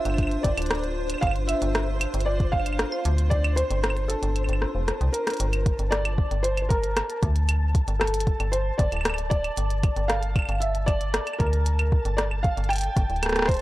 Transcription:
Already playing: D4 F4 C5 E5
0.05 G1, closed hi-hat, claves
0.10 claves
0.14 claves
0.18 kick, closed hi-hat, claves
0.23 claves
0.27 claves
0.31 closed hi-hat
0.43 G1 D5, kick, closed hi-hat
0.57 D1, closed hi-hat, claves
0.62 closed hi-hat
0.66 closed hi-hat
0.71 cross-stick, closed hi-hat
0.75 closed hi-hat
0.79 closed hi-hat
0.84 closed hi-hat
1.10 closed hi-hat, claves
1.14 claves
1.18 F5, claves
1.23 G1, kick, closed hi-hat, claves
1.27 claves
1.31 claves
1.36 closed hi-hat
1.47 E5, closed hi-hat, claves
1.62 G1, closed hi-hat
1.75 cross-stick, closed hi-hat
2.01 closed hi-hat, claves
2.14 G1, closed hi-hat
2.20 closed hi-hat
2.26 D5
2.40 kick, closed hi-hat
2.52 F5, kick, claves
2.60 claves
2.66 closed hi-hat, claves
2.73 claves
2.79 cross-stick, closed hi-hat
2.92 claves
3.05 D2, closed hi-hat
3.18 closed hi-hat
3.30 D5, kick, closed hi-hat
3.44 closed hi-hat, claves
3.56 C5, closed hi-hat
3.71 G1, closed hi-hat
3.84 cross-stick, closed hi-hat
3.90 claves
3.97 closed hi-hat
4.08 A4, closed hi-hat
4.23 G1, closed hi-hat
4.36 closed hi-hat, claves
4.44 claves
4.49 G1, closed hi-hat
4.53 claves
4.62 cross-stick
4.75 F1
4.88 cross-stick, closed hi-hat
5.01 C2, closed hi-hat
5.13 A#4, closed hi-hat
5.27 cross-stick, closed hi-hat
5.30 closed hi-hat
5.34 closed hi-hat
5.37 G1 A5, closed hi-hat
5.40 closed hi-hat
5.53 closed hi-hat, claves
5.66 kick, closed hi-hat
5.79 G1, closed hi-hat
5.91 D5, cross-stick, closed hi-hat
6.05 closed hi-hat, claves
6.18 kick
6.31 G1, closed hi-hat
6.43 C5, closed hi-hat
6.57 closed hi-hat, claves
6.62 C5
6.69 A#4, kick, closed hi-hat
6.84 closed hi-hat
6.97 cross-stick, closed hi-hat, claves
7.10 closed hi-hat
7.23 D2, kick, closed hi-hat
7.36 closed hi-hat
7.49 closed hi-hat, claves
7.75 kick, closed hi-hat
7.88 G1, closed hi-hat
8.00 A4, cross-stick, closed hi-hat, claves
8.07 closed hi-hat
8.14 closed hi-hat
8.20 closed hi-hat
8.27 kick, closed hi-hat
8.40 G1, closed hi-hat, claves
8.52 C5, closed hi-hat
8.78 G1 D5, kick, closed hi-hat
8.92 D1, closed hi-hat, claves
8.97 claves
9.01 claves
9.05 cross-stick, closed hi-hat, claves
9.10 claves
9.14 claves
9.18 closed hi-hat
9.30 D5, kick, closed hi-hat
9.44 closed hi-hat, claves
9.57 G1, closed hi-hat
9.70 closed hi-hat
9.83 kick, closed hi-hat, claves
9.97 G1, closed hi-hat
10.08 F5, cross-stick, closed hi-hat
10.23 closed hi-hat
10.36 kick, closed hi-hat, claves
10.39 claves
10.42 claves
10.45 closed hi-hat, claves
10.49 G1, claves
10.52 claves
10.55 claves
10.59 E5, closed hi-hat, claves
10.75 closed hi-hat
10.86 D5, kick, closed hi-hat, claves
11.01 closed hi-hat
11.14 cross-stick, closed hi-hat
11.27 closed hi-hat, claves
11.34 claves
11.39 D2 A#4, kick, closed hi-hat, claves
11.47 claves
11.53 closed hi-hat
11.66 closed hi-hat
11.79 closed hi-hat, claves
11.92 kick
12.05 G1, closed hi-hat
12.17 D5, cross-stick, closed hi-hat
12.31 claves
12.43 F5, kick, closed hi-hat
12.57 G1, closed hi-hat
12.64 closed hi-hat
12.69 G5, closed hi-hat, claves
12.73 closed hi-hat
12.76 closed hi-hat
12.78 closed hi-hat
12.81 closed hi-hat
12.84 closed hi-hat
12.97 G1, kick, closed hi-hat
13.10 D1, closed hi-hat
13.16 closed hi-hat
13.23 cross-stick, closed hi-hat, claves
13.26 cross-stick
13.29 cross-stick, closed hi-hat
13.32 cross-stick
13.36 cross-stick, closed hi-hat
13.39 cross-stick
13.42 cross-stick
13.45 C5, kick, cross-stick, closed hi-hat
13.51 closed hi-hat
13.54 closed hi-hat
13.57 closed hi-hat

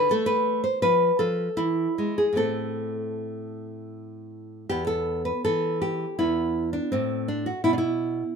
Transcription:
Already playing: D3 B4
0.11 A3 A4
0.26 B4
0.64 C5
0.82 F3 B4
1.19 F3 A4
1.57 E3 E4
1.98 G#3
2.18 G#4
2.33 A2 A3 C4
2.37 A4
4.69 E2 B3 G4
4.87 A4
5.25 B4
5.45 E3 A4
5.82 G4
6.19 E2 B3 E4
6.73 D4
6.92 A2 C4
7.28 D4
7.46 F#4
7.64 B2 E4
7.73 D4
7.78 E4

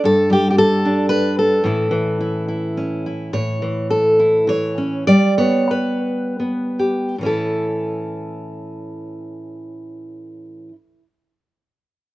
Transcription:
0.04 G2 A4
0.30 G3 G4
0.50 G4
0.58 A4
0.85 D4
1.09 B4
1.39 A4
1.64 A2 E3 C#4 E4
1.91 E3
2.21 E4
2.48 E4
2.77 C#4
3.06 E4
3.33 A2 C#5
3.62 E3
3.90 A4
4.19 E4
4.47 E3 C#5
4.78 C#4
5.07 G3 D5
5.38 B3 C#5
5.71 B4
6.40 B3
6.79 G4
7.18 A2 E3
7.23 C#4 E4 A4

